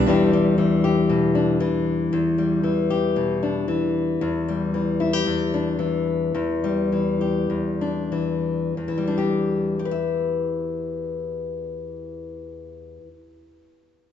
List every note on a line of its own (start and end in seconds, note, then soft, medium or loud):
0.00 0.11 B3 medium
0.00 0.11 D4 medium
0.00 0.11 G4 medium
0.07 2.12 E2 medium
0.07 0.57 E3 medium
0.07 0.33 G3 medium
0.07 1.35 D4 soft
0.07 0.84 G4 medium
0.33 2.38 G3 soft
0.58 1.60 E3 medium
0.84 2.90 G4 soft
1.09 1.61 B2 medium
1.35 2.16 D4 soft
1.60 2.63 E3 medium
2.13 4.21 E2 medium
2.38 4.48 G3 soft
2.63 3.68 E3 soft
2.90 5.00 G4 soft
3.16 3.68 B2 soft
3.43 4.24 D4 soft
3.68 4.74 E3 soft
4.21 5.26 E2 medium
4.48 6.63 G3 soft
4.74 5.78 E3 soft
5.00 5.13 E4 soft
5.13 6.34 G4 soft
5.26 6.34 E2 soft
5.54 6.38 D4 soft
5.79 6.92 E3 soft
6.35 7.49 E2 medium
6.64 8.96 G3 soft
6.92 8.11 E3 soft
7.21 8.74 G4 soft
7.50 8.76 E2 soft
7.81 8.74 D4 soft
8.12 8.74 E3 soft
8.77 12.97 E2 soft
8.88 13.08 E3 soft
8.98 9.79 G3 soft
9.07 9.85 D4 soft
9.18 9.79 G4 soft
9.79 13.99 G4 soft
9.85 14.05 B4 soft
9.91 14.11 E5 soft